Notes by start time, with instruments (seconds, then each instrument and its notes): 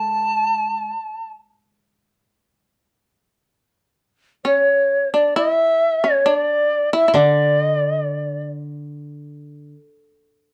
Already playing: koto G#3, shamisen A4, shakuhachi A5
0.17 shamisen A#4
0.34 shamisen A4
0.52 shamisen A#4
0.68 shamisen A4
4.45 shamisen C#4, shakuhachi C#5
5.14 shamisen D4, shakuhachi D5
5.36 shamisen E4, shakuhachi E5
6.04 shamisen C#4, shakuhachi C#5
6.25 shamisen D4, shakuhachi D5
6.93 shamisen E4, shakuhachi E5
7.08 shamisen E4
7.14 koto D3, shamisen D4, shakuhachi D5
7.62 shakuhachi D#5
7.74 shakuhachi D5
7.88 shakuhachi D#5
8.00 shakuhachi D5